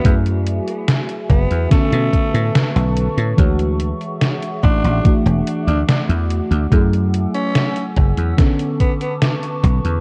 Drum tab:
HH |xxxxxxxxxxxxxxxx|xxxxxxxxxxxxxxxx|xxxxxxxxxxxxxxxx|
SD |----o---o---o---|----o-------o---|----o---o---o---|
BD |o-----o-o-o-----|o-----o-o-------|o-----o-o-o---o-|